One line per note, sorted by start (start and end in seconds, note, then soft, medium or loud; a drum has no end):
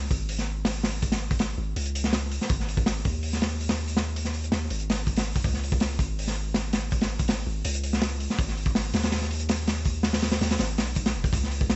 0.11 1.56 G#1 loud
0.11 kick loud
0.11 open hi-hat medium
0.29 open hi-hat medium
0.38 snare soft
0.65 snare loud
0.65 open hi-hat medium
0.83 snare loud
0.83 open hi-hat medium
1.02 kick medium
1.02 open hi-hat medium
1.12 snare medium
1.12 open hi-hat medium
1.31 kick medium
1.31 open hi-hat medium
1.39 snare loud
1.39 open hi-hat medium
1.58 1.74 G#1 loud
1.76 2.39 C#2 loud
1.76 open hi-hat medium
1.86 closed hi-hat soft
1.95 open hi-hat medium
2.04 snare medium
2.13 snare loud
2.13 open hi-hat medium
2.31 open hi-hat medium
2.41 snare soft
2.49 3.04 G#1 loud
2.49 kick loud
2.49 open hi-hat medium
2.60 snare soft
2.69 open hi-hat medium
2.77 kick medium
2.86 snare loud
2.86 open hi-hat medium
3.05 4.51 D#2 loud
3.05 kick loud
3.05 open hi-hat medium
3.23 open hi-hat medium
3.33 snare soft
3.42 snare medium
3.42 open hi-hat medium
3.61 open hi-hat medium
3.69 snare loud
3.69 open hi-hat medium
3.88 open hi-hat medium
3.97 snare loud
3.97 open hi-hat medium
4.16 open hi-hat medium
4.25 snare soft
4.34 open hi-hat medium
4.44 closed hi-hat soft
4.52 4.69 D#2 loud
4.52 snare loud
4.52 open hi-hat medium
4.70 5.34 G#1 loud
4.70 open hi-hat medium
4.80 closed hi-hat soft
4.90 snare medium
4.90 open hi-hat medium
5.07 kick medium
5.07 open hi-hat medium
5.16 snare loud
5.16 open hi-hat medium
5.36 kick medium
5.36 open hi-hat medium
5.44 5.98 C#2 medium
5.44 kick loud
5.44 open hi-hat medium
5.54 snare soft
5.64 open hi-hat medium
5.72 kick loud
5.80 snare loud
5.80 open hi-hat medium
5.99 7.45 G#1 loud
5.99 kick medium
5.99 open hi-hat medium
6.19 open hi-hat medium
6.27 snare soft
6.54 snare loud
6.54 open hi-hat medium
6.73 snare loud
6.73 open hi-hat medium
6.91 kick medium
6.91 open hi-hat medium
7.01 snare loud
7.01 open hi-hat medium
7.19 kick medium
7.19 open hi-hat medium
7.28 snare loud
7.28 open hi-hat medium
7.47 7.63 G#1 loud
7.65 8.28 C#2 loud
7.65 open hi-hat medium
7.74 closed hi-hat soft
7.83 open hi-hat medium
7.93 snare medium
8.02 snare loud
8.02 open hi-hat medium
8.20 open hi-hat medium
8.30 snare medium
8.39 8.93 G#1 loud
8.39 kick loud
8.39 open hi-hat medium
8.48 snare soft
8.57 open hi-hat medium
8.66 kick medium
8.75 snare loud
8.75 open hi-hat medium
8.94 10.40 D#2 loud
8.94 snare loud
8.94 open hi-hat medium
9.03 snare loud
9.03 open hi-hat medium
9.12 snare loud
9.12 open hi-hat medium
9.21 snare soft
9.31 open hi-hat medium
9.40 closed hi-hat soft
9.49 snare loud
9.49 open hi-hat medium
9.67 snare loud
9.67 open hi-hat medium
9.85 kick medium
9.85 open hi-hat medium
10.03 snare medium
10.03 open hi-hat medium
10.13 snare loud
10.13 open hi-hat medium
10.22 snare loud
10.22 open hi-hat medium
10.32 snare loud
10.32 open hi-hat medium
10.41 10.58 D#2 loud
10.41 snare loud
10.41 open hi-hat medium
10.51 snare loud
10.51 open hi-hat medium
10.59 10.80 G#1 loud
10.59 snare loud
10.59 open hi-hat medium
10.78 11.16 B1 medium
10.78 snare loud
10.78 open hi-hat medium
10.95 kick medium
10.95 open hi-hat medium
11.06 snare loud
11.06 open hi-hat medium
11.15 11.31 D#1 medium
11.24 kick medium
11.24 open hi-hat medium
11.33 11.76 C#2 loud
11.33 kick loud
11.33 open hi-hat medium
11.43 snare soft
11.51 open hi-hat medium
11.61 kick medium
11.70 snare loud
11.70 open hi-hat medium